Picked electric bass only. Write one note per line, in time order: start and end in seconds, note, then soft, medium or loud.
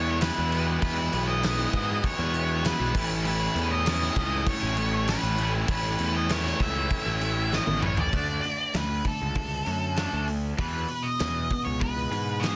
0.00 0.29 E2 loud
0.38 0.77 E2 medium
0.82 1.08 E2 loud
1.13 1.65 B1 loud
1.73 1.99 G#2 medium
2.19 2.71 E2 loud
2.80 2.93 B1 medium
2.95 3.47 A1 loud
3.55 4.07 E2 loud
4.16 4.42 C#2 medium
4.63 5.14 A1 loud
5.23 5.62 A1 medium
5.68 5.95 A1 medium
5.99 6.52 E2 medium
6.60 6.86 C#2 loud
7.06 7.58 A1 loud
7.67 8.07 A1 loud
8.13 8.39 D2 medium
8.74 9.01 D2 medium
9.22 9.60 C#2 medium
9.67 10.06 F#2 medium
10.13 10.52 D2 medium
10.58 10.85 E2 medium
11.20 11.47 E2 medium
11.66 12.06 C#2 medium
12.11 12.51 G#2 medium